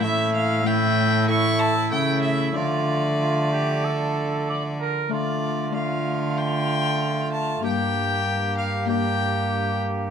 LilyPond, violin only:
\new Staff \with { instrumentName = "Violin" } { \time 4/4 \key d \minor \tempo 4 = 95 e''8 f''8 g''4 cis'''8 a''8 g''8 e''8 | d''2.~ d''8 r8 | d''4 f''4 g''4. a''8 | g''4. f''8 g''4. r8 | }